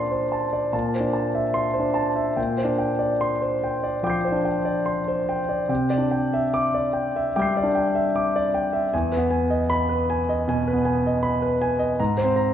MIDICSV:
0, 0, Header, 1, 2, 480
1, 0, Start_track
1, 0, Tempo, 827586
1, 1377, Time_signature, 4, 2, 24, 8
1, 3788, Tempo, 809717
1, 4748, Tempo, 769231
1, 7485, End_track
2, 0, Start_track
2, 0, Title_t, "Grand piano"
2, 0, Program_c, 0, 0
2, 0, Control_c, 0, 64, 127
2, 0, Note_on_c, 0, 46, 37
2, 0, Note_on_c, 0, 62, 32
2, 0, Note_on_c, 0, 72, 29
2, 0, Note_on_c, 0, 74, 36
2, 0, Note_on_c, 0, 81, 32
2, 0, Note_on_c, 0, 84, 53
2, 66, Note_off_c, 0, 72, 0
2, 66, Note_on_c, 0, 72, 32
2, 138, Note_off_c, 0, 84, 0
2, 185, Note_off_c, 0, 81, 0
2, 185, Note_on_c, 0, 81, 31
2, 259, Note_off_c, 0, 72, 0
2, 307, Note_off_c, 0, 74, 0
2, 307, Note_on_c, 0, 74, 32
2, 378, Note_off_c, 0, 81, 0
2, 398, Note_off_c, 0, 46, 0
2, 424, Note_on_c, 0, 46, 38
2, 424, Note_on_c, 0, 81, 35
2, 427, Note_off_c, 0, 74, 0
2, 436, Control_c, 0, 64, 0
2, 438, Note_off_c, 0, 62, 0
2, 535, Control_c, 0, 64, 127
2, 550, Note_on_c, 0, 72, 33
2, 581, Note_on_c, 0, 62, 34
2, 615, Note_off_c, 0, 81, 0
2, 658, Note_on_c, 0, 81, 36
2, 736, Note_off_c, 0, 72, 0
2, 781, Note_on_c, 0, 76, 34
2, 833, Note_off_c, 0, 62, 0
2, 848, Note_off_c, 0, 81, 0
2, 893, Note_on_c, 0, 84, 52
2, 968, Note_off_c, 0, 76, 0
2, 1008, Note_on_c, 0, 72, 36
2, 1042, Note_on_c, 0, 62, 28
2, 1085, Note_off_c, 0, 84, 0
2, 1126, Note_on_c, 0, 81, 38
2, 1204, Note_off_c, 0, 72, 0
2, 1209, Note_off_c, 0, 62, 0
2, 1252, Note_on_c, 0, 76, 31
2, 1324, Note_off_c, 0, 81, 0
2, 1352, Note_off_c, 0, 46, 0
2, 1371, Note_on_c, 0, 79, 33
2, 1373, Note_on_c, 0, 46, 38
2, 1375, Note_off_c, 0, 76, 0
2, 1387, Control_c, 0, 64, 0
2, 1481, Control_c, 0, 64, 127
2, 1495, Note_on_c, 0, 72, 32
2, 1533, Note_on_c, 0, 62, 34
2, 1567, Note_off_c, 0, 79, 0
2, 1614, Note_on_c, 0, 79, 33
2, 1688, Note_off_c, 0, 72, 0
2, 1734, Note_on_c, 0, 74, 36
2, 1790, Note_off_c, 0, 62, 0
2, 1807, Note_off_c, 0, 79, 0
2, 1861, Note_on_c, 0, 84, 50
2, 1927, Note_off_c, 0, 74, 0
2, 1983, Note_on_c, 0, 72, 32
2, 2050, Note_off_c, 0, 84, 0
2, 2108, Note_on_c, 0, 79, 34
2, 2172, Note_off_c, 0, 72, 0
2, 2225, Note_on_c, 0, 74, 34
2, 2294, Note_off_c, 0, 79, 0
2, 2310, Note_off_c, 0, 46, 0
2, 2337, Note_on_c, 0, 53, 33
2, 2342, Note_on_c, 0, 79, 40
2, 2343, Note_on_c, 0, 86, 30
2, 2359, Note_on_c, 0, 91, 31
2, 2376, Note_on_c, 0, 96, 28
2, 2412, Note_off_c, 0, 74, 0
2, 2462, Note_on_c, 0, 72, 33
2, 2505, Note_on_c, 0, 62, 34
2, 2532, Note_off_c, 0, 79, 0
2, 2580, Note_on_c, 0, 79, 37
2, 2594, Note_off_c, 0, 53, 0
2, 2654, Note_off_c, 0, 72, 0
2, 2697, Note_on_c, 0, 74, 38
2, 2761, Note_off_c, 0, 62, 0
2, 2774, Note_off_c, 0, 79, 0
2, 2817, Note_on_c, 0, 84, 40
2, 2893, Note_off_c, 0, 74, 0
2, 2946, Note_on_c, 0, 72, 38
2, 3013, Note_off_c, 0, 84, 0
2, 3067, Note_on_c, 0, 79, 38
2, 3137, Note_off_c, 0, 72, 0
2, 3183, Note_on_c, 0, 74, 35
2, 3258, Note_off_c, 0, 79, 0
2, 3285, Note_off_c, 0, 86, 0
2, 3293, Note_off_c, 0, 91, 0
2, 3296, Note_on_c, 0, 48, 39
2, 3301, Note_off_c, 0, 96, 0
2, 3303, Note_on_c, 0, 79, 35
2, 3304, Note_off_c, 0, 74, 0
2, 3314, Control_c, 0, 64, 0
2, 3408, Control_c, 0, 64, 127
2, 3423, Note_on_c, 0, 74, 38
2, 3467, Note_on_c, 0, 62, 35
2, 3497, Note_off_c, 0, 79, 0
2, 3545, Note_on_c, 0, 79, 35
2, 3617, Note_off_c, 0, 74, 0
2, 3674, Note_on_c, 0, 76, 39
2, 3723, Note_off_c, 0, 62, 0
2, 3738, Note_off_c, 0, 79, 0
2, 3792, Note_on_c, 0, 86, 55
2, 3863, Note_off_c, 0, 76, 0
2, 3915, Note_on_c, 0, 74, 38
2, 3983, Note_off_c, 0, 86, 0
2, 4026, Note_on_c, 0, 79, 37
2, 4104, Note_off_c, 0, 74, 0
2, 4161, Note_on_c, 0, 76, 38
2, 4219, Note_off_c, 0, 79, 0
2, 4240, Note_off_c, 0, 48, 0
2, 4280, Note_on_c, 0, 79, 46
2, 4280, Note_on_c, 0, 86, 33
2, 4283, Note_on_c, 0, 55, 41
2, 4299, Note_on_c, 0, 91, 33
2, 4313, Note_on_c, 0, 96, 32
2, 4346, Note_off_c, 0, 76, 0
2, 4403, Note_on_c, 0, 74, 39
2, 4441, Note_on_c, 0, 62, 39
2, 4466, Note_off_c, 0, 79, 0
2, 4511, Note_on_c, 0, 79, 43
2, 4531, Note_off_c, 0, 55, 0
2, 4587, Note_off_c, 0, 74, 0
2, 4629, Note_on_c, 0, 76, 40
2, 4689, Note_off_c, 0, 62, 0
2, 4700, Note_off_c, 0, 79, 0
2, 4742, Note_off_c, 0, 86, 0
2, 4751, Note_on_c, 0, 86, 46
2, 4821, Note_off_c, 0, 76, 0
2, 4878, Note_on_c, 0, 74, 44
2, 4946, Note_off_c, 0, 86, 0
2, 4993, Note_on_c, 0, 79, 42
2, 5069, Note_off_c, 0, 74, 0
2, 5110, Note_on_c, 0, 76, 39
2, 5186, Note_off_c, 0, 79, 0
2, 5224, Note_off_c, 0, 91, 0
2, 5231, Note_off_c, 0, 76, 0
2, 5232, Note_off_c, 0, 96, 0
2, 5238, Note_on_c, 0, 80, 39
2, 5242, Control_c, 0, 64, 0
2, 5242, Note_on_c, 0, 40, 45
2, 5340, Control_c, 0, 64, 127
2, 5353, Note_on_c, 0, 71, 37
2, 5384, Note_on_c, 0, 59, 40
2, 5427, Note_off_c, 0, 80, 0
2, 5469, Note_on_c, 0, 80, 37
2, 5545, Note_off_c, 0, 71, 0
2, 5592, Note_on_c, 0, 75, 40
2, 5646, Note_off_c, 0, 59, 0
2, 5665, Note_off_c, 0, 80, 0
2, 5713, Note_on_c, 0, 83, 70
2, 5789, Note_off_c, 0, 75, 0
2, 5834, Note_on_c, 0, 71, 39
2, 5911, Note_off_c, 0, 83, 0
2, 5963, Note_on_c, 0, 80, 41
2, 6031, Note_off_c, 0, 71, 0
2, 6084, Note_on_c, 0, 75, 45
2, 6154, Note_off_c, 0, 80, 0
2, 6181, Note_off_c, 0, 40, 0
2, 6200, Note_on_c, 0, 47, 44
2, 6207, Note_on_c, 0, 80, 50
2, 6273, Note_off_c, 0, 75, 0
2, 6324, Note_on_c, 0, 71, 48
2, 6358, Note_on_c, 0, 59, 39
2, 6394, Note_off_c, 0, 80, 0
2, 6434, Note_on_c, 0, 80, 44
2, 6453, Note_off_c, 0, 47, 0
2, 6512, Note_off_c, 0, 71, 0
2, 6567, Note_on_c, 0, 75, 41
2, 6611, Note_off_c, 0, 59, 0
2, 6625, Note_off_c, 0, 80, 0
2, 6668, Note_on_c, 0, 83, 52
2, 6750, Note_off_c, 0, 75, 0
2, 6789, Note_on_c, 0, 71, 46
2, 6859, Note_off_c, 0, 83, 0
2, 6910, Note_on_c, 0, 80, 50
2, 6977, Note_off_c, 0, 71, 0
2, 7020, Note_on_c, 0, 75, 45
2, 7097, Note_off_c, 0, 80, 0
2, 7141, Note_off_c, 0, 75, 0
2, 7147, Note_on_c, 0, 82, 44
2, 7150, Note_on_c, 0, 44, 47
2, 7153, Control_c, 0, 64, 0
2, 7241, Control_c, 0, 64, 127
2, 7260, Note_on_c, 0, 72, 44
2, 7298, Note_on_c, 0, 60, 39
2, 7338, Note_off_c, 0, 82, 0
2, 7376, Note_on_c, 0, 82, 50
2, 7457, Note_off_c, 0, 72, 0
2, 7485, Note_off_c, 0, 44, 0
2, 7485, Note_off_c, 0, 60, 0
2, 7485, Note_off_c, 0, 82, 0
2, 7485, End_track
0, 0, End_of_file